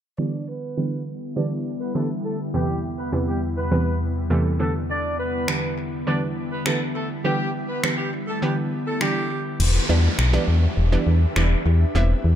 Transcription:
0.18 0.55 D3 medium
0.18 2.52 D3 medium
0.18 0.55 E3 medium
0.18 2.52 G3 medium
0.18 0.55 G3 medium
0.18 2.52 B3 medium
0.18 0.55 B3 medium
0.18 0.44 D4 medium
0.18 4.56 E4 medium
0.18 0.44 D5 medium
0.48 1.04 B3 medium
0.48 1.03 B4 medium
0.77 1.14 D3 medium
0.77 1.14 E3 medium
0.77 1.14 G3 medium
0.77 1.14 B3 medium
1.36 1.73 D3 medium
1.36 1.73 E3 medium
1.36 1.73 G3 medium
1.36 1.73 B3 medium
1.36 1.49 D4 medium
1.36 1.49 D5 medium
1.81 1.94 B3 medium
1.81 1.93 B4 medium
1.95 2.32 D3 medium
1.95 2.32 E3 medium
1.95 2.32 G3 medium
1.95 2.08 A3 medium
1.95 2.32 B3 medium
1.95 2.08 A4 medium
2.25 2.38 A3 medium
2.25 2.37 A4 medium
2.54 2.90 E2 medium
2.54 4.58 E2 medium
2.54 4.58 C3 medium
2.54 2.90 C3 medium
2.54 2.90 E3 medium
2.54 4.58 G3 medium
2.54 2.91 G3 medium
2.54 2.80 G3 medium
2.54 9.56 B3 medium
2.54 2.91 B3 medium
2.54 2.79 G4 loud
2.98 3.11 B3 medium
2.98 3.11 B4 medium
3.12 3.49 E2 medium
3.12 3.49 C3 medium
3.12 3.49 E3 medium
3.12 3.49 G3 medium
3.12 3.49 B3 medium
3.27 3.41 G3 soft
3.27 3.40 G4 medium
3.57 3.99 B3 medium
3.57 3.98 B4 medium
3.71 4.08 E2 medium
3.71 4.08 C3 medium
3.71 4.08 E3 medium
3.71 4.08 G3 medium
3.71 4.08 B3 loud
4.30 4.60 E2 loud
4.30 4.60 C3 medium
4.30 4.58 E3 medium
4.30 4.59 G3 medium
4.30 4.60 A3 loud
4.59 5.30 D3 medium
4.59 7.22 D3 medium
4.59 5.30 E3 medium
4.59 5.30 G3 medium
4.59 9.56 G3 medium
4.59 4.73 A3 medium
4.59 5.31 B3 medium
4.59 9.56 E4 medium
4.59 4.73 A4 medium
4.89 5.15 D4 medium
4.89 5.15 D5 medium
5.19 5.74 B3 medium
5.19 5.74 B4 medium
5.48 5.84 D3 medium
5.48 5.85 E3 medium
5.48 5.85 G3 medium
5.48 5.85 B3 medium
5.48 finger snap loud
6.07 6.43 D3 medium
6.07 6.43 E3 medium
6.07 6.43 G3 medium
6.07 6.44 B3 medium
6.07 6.20 D4 medium
6.07 6.20 D5 medium
6.51 6.64 B3 medium
6.51 6.64 B4 medium
6.66 7.02 D3 medium
6.66 7.02 E3 medium
6.66 7.02 G3 medium
6.66 6.79 A3 medium
6.66 7.02 B3 medium
6.66 6.78 A4 medium
6.66 finger snap loud
6.95 7.08 A3 medium
6.95 7.08 A4 medium
7.24 7.61 D3 medium
7.24 9.58 D3 medium
7.24 7.61 E3 medium
7.24 7.61 G3 medium
7.24 7.50 G3 medium
7.24 7.61 B3 medium
7.24 7.50 G4 loud
7.69 7.82 B3 medium
7.69 7.81 B4 medium
7.83 8.20 D3 medium
7.83 8.20 E3 medium
7.83 8.20 G3 medium
7.83 8.20 B3 medium
7.83 finger snap loud
7.98 8.11 G3 medium
7.98 8.11 G4 medium
8.27 8.41 A3 medium
8.27 8.40 A4 medium
8.42 8.79 D3 medium
8.42 8.79 E3 medium
8.42 8.79 G3 medium
8.42 8.55 G3 medium
8.42 8.79 B3 medium
8.42 8.55 G4 medium
8.86 8.99 A3 medium
8.86 8.99 A4 medium
9.01 9.37 D3 medium
9.01 9.37 E3 medium
9.01 9.38 G3 medium
9.01 9.43 G3 medium
9.01 9.38 D4 medium
9.01 9.43 G4 medium
9.01 finger snap loud
9.60 9.79 E1 loud
9.60 11.93 D4 medium
9.60 11.93 G4 medium
9.60 12.35 B4 medium
9.60 11.93 E5 medium
9.60 crash medium
9.60 downlifter medium
9.89 10.08 E2 loud
9.89 10.17 E3 loud
9.89 10.17 G3 medium
9.89 10.17 B3 medium
9.89 10.17 D4 loud
10.19 10.38 B1 loud
10.19 finger snap loud
10.33 10.70 E3 loud
10.33 10.70 G3 medium
10.33 10.70 B3 medium
10.33 10.70 D4 loud
10.48 10.67 E2 loud
10.77 10.97 E1 loud
10.92 11.19 E3 medium
10.92 11.20 G3 medium
10.92 11.20 B3 medium
10.92 11.20 D4 medium
11.07 11.26 E2 medium
11.36 11.55 E1 loud
11.36 11.73 E3 medium
11.36 11.73 G3 medium
11.36 11.73 B3 medium
11.36 11.73 D4 loud
11.36 finger snap loud
11.66 11.85 E2 loud
11.95 12.14 E1 loud
11.95 12.22 G3 medium
11.95 12.23 B3 medium
11.95 12.23 C4 medium
11.95 12.35 E4 medium
11.95 12.23 E4 loud
11.95 12.35 E5 medium
11.95 12.35 G5 medium
12.24 12.35 E2 loud

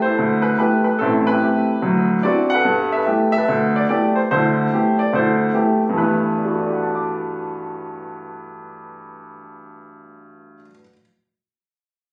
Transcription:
0.00 0.41 B4 medium
0.00 0.41 C5 medium
0.05 0.58 E4 medium
0.05 0.83 A4 medium
0.18 0.53 D2 medium
0.42 0.57 B4 medium
0.59 0.87 A3 medium
0.59 0.87 B3 soft
0.59 0.87 E4 soft
0.59 0.87 G4 medium
0.59 0.83 B4 medium
0.84 1.00 B4 medium
0.99 1.36 A1 medium
0.99 1.36 A2 medium
0.99 1.26 A4 medium
1.03 1.41 C4 medium
1.03 1.30 E4 medium
1.27 2.27 B4 medium
1.32 2.22 E4 medium
1.32 1.42 G4 medium
1.42 1.70 A3 medium
1.42 1.70 C4 soft
1.42 1.70 G4 soft
1.82 2.18 D2 medium
1.82 2.18 F#3 medium
2.23 2.52 B3 soft
2.23 2.52 C4 medium
2.23 2.52 D4 soft
2.23 2.52 E4 medium
2.23 2.52 F#4 medium
2.23 2.51 D5 medium
2.50 2.88 F#5 medium
2.55 2.96 A4 medium
2.55 2.96 B4 medium
2.65 3.01 G2 medium
2.65 3.01 B3 medium
2.92 3.30 E5 medium
2.97 3.36 A4 medium
2.97 3.37 B4 medium
3.06 3.34 A3 medium
3.06 3.34 B3 soft
3.06 3.34 E4 soft
3.06 3.35 G4 medium
3.32 3.75 E5 medium
3.37 4.13 A4 medium
3.37 4.14 B4 medium
3.48 3.84 D2 medium
3.76 3.81 D5 medium
3.89 4.17 A3 medium
3.89 4.17 B3 soft
3.89 4.17 E4 soft
3.89 4.17 G4 medium
3.89 4.13 D5 medium
4.16 4.21 C5 medium
4.31 4.66 D2 medium
4.31 4.66 D3 medium
4.31 5.00 C5 medium
4.35 4.72 E4 medium
4.35 5.11 A4 medium
4.73 5.00 A3 soft
4.73 5.00 B3 soft
4.73 5.00 E4 soft
4.73 5.00 G4 medium
4.99 5.12 D5 medium
5.13 5.48 D2 medium
5.13 5.52 C5 medium
5.17 5.52 E4 soft
5.17 5.93 A4 medium
5.54 5.81 A3 medium
5.54 5.82 B3 soft
5.54 5.81 E4 soft
5.54 5.82 G4 medium
5.89 10.57 G2 medium
5.94 10.61 E3 medium
5.94 10.65 A3 medium
5.94 10.61 B4 medium
6.02 10.69 B3 medium
6.38 10.71 D4 soft
6.45 10.74 F#4 soft
6.54 10.79 A4 soft
6.62 10.83 D5 soft
6.72 10.88 F#5 soft
6.83 10.93 A5 soft
6.95 10.99 D6 soft

